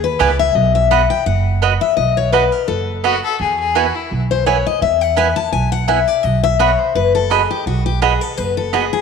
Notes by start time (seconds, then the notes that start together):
Already playing: D#2
0.04 B4
0.19 C#2 B3 E4 B4 D5 G#5
0.39 E5
0.55 B1 D#5
0.75 E5
0.91 B3 F#4 D#5 F#5 B5
1.10 G5
1.26 F#1 F#5
1.62 B3 F#4 D#5 B5
1.81 E5
1.97 B1 D#5
2.17 C#5
2.32 B3 F#4 B4 D#5 B5
2.52 A#4
2.68 F#1 A4
3.04 B3 F#4 D#5 B5
3.24 A4
3.40 E2 G#4
3.59 G#4
3.75 B3 E4 F#4 B4 G#5
3.95 E4
4.11 B1
4.31 C5
4.46 B3 E4 B4 C#5 G#5
4.67 D#5
4.82 E2 E5
5.01 F#5
5.16 B3 E4 B4 G#5
5.36 A5
5.52 B1 G#5
5.72 F#5
5.88 B3 E4 B4 E5 G#5
6.08 D5
6.23 B1 D#5
6.44 E5
6.59 B3 F#4 C#5 D#5 B5
6.79 C5
6.95 F#1 B4
7.15 A4
7.30 B3 F#4 G#4 D#5 B5
7.51 G4
7.66 B1 F#4
7.86 G4
8.02 B3 F#4 G#4 D#5 B5
8.21 A4
8.37 F#1 B4
8.57 A4
8.73 B3 F#4 G#4 D#5 B5
8.93 G#4